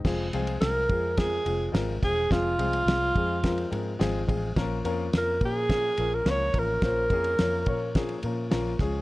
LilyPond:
<<
  \new Staff \with { instrumentName = "Alto saxophone" } { \time 4/4 \key f \phrygian \tempo 4 = 106 r4 bes'4 aes'4 r8 aes'8 | f'2. r4 | r4 bes'8 aes'4~ aes'16 bes'16 des''8 bes'8~ | bes'2~ bes'8 r4. | }
  \new Staff \with { instrumentName = "Grand piano" } { \time 4/4 \key f \phrygian <f aes c' f' aes'>8 <f aes c' f' aes'>8 <f aes c' f' aes'>8 <f aes c' f' aes'>8 <f aes c' f' bes'>8 <f aes c' f' aes'>8 <f aes c' f' bes'>8 <f aes c' f' aes'>8 | <f aes c' f' aes'>8 <f aes c' f' aes'>8 <f aes c' f' aes'>8 <f aes c' f' aes'>8 <f aes c' f' bes'>8 <f aes c' f' bes'>8 <f aes c' f' aes'>8 <f aes c' f' aes'>8 | <f bes des' f' bes'>8 <f bes des' f' bes'>8 <f bes des' f' bes'>8 <f bes des' f' bes'>8 <f bes des' f' aes'>8 <f bes des' f' bes'>8 <f bes des' f' bes'>8 <f bes des' f' bes'>8 | <f bes des' f' c''>8 <f bes des' f' aes'>8 <f bes des' f' des''>8 <f bes des' f' des''>8 <f bes des' f' aes'>8 <f bes des' f' bes'>8 <f bes des' f' bes'>8 <f aes des' f' aes'>8 | }
  \new Staff \with { instrumentName = "Fingered electric bass" } { \clef bass \time 4/4 \key f \phrygian f,,8 c,8 c,8 f,4 f,,8 aes,,8 fes,,8 | f,,8 c,8 c,8 f,4 aes,8 aes,,8 a,,8 | bes,,8 f,8 f,8 bes,4 bes,,8 des,8 a,,8 | bes,,8 f,8 f,8 bes,4 bes,8 bes,,8 des,8 | }
  \new DrumStaff \with { instrumentName = "Drums" } \drummode { \time 4/4 <cymc bd sn>8 cymr16 cymr16 <cymr sn>8 <bd cymr>8 <bd cymr sn>8 cymr8 <cymr sn>8 <bd cymr sn>8 | <bd cymr sn>8 cymr16 cymr16 <cymr sn>8 <bd cymr>8 <bd cymr sn>16 cymr16 cymr8 <cymr sn>8 <bd cymr>8 | <bd cymr sn>8 cymr8 <cymr sn>8 <bd cymr>8 <bd cymr sn>8 cymr8 <cymr sn>8 <bd cymr>8 | <bd cymr sn>8 <bd cymr>16 cymr16 <cymr sn>8 <bd cymr>8 <bd cymr sn>16 cymr16 cymr8 <cymr sn>8 <bd cymr sn>8 | }
>>